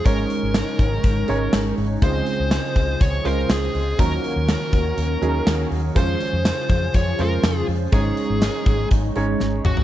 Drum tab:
HH |x-x-x-x-x-x-x-o-|x-x-x-x-x-x-x-o-|x-x-x-x-x-x-x-o-|x-x-x-x-x-x-x-o-|
TB |----x-------x---|----x-------x---|----x-------x---|----x-------x---|
SD |----o-------o---|----o-------o---|----o-------o---|----o-------o---|
T2 |----------------|----------------|----------------|----------------|
FT |----------------|----------------|----------------|----------------|
BD |o-----o-o-------|o-----o-o-------|o-----o---------|o-----o-o-------|

HH |x-x-x-x-x-x-----|
TB |----x-----------|
SD |----o-------o---|
T2 |--------------o-|
FT |---------------o|
BD |o-----o-o-------|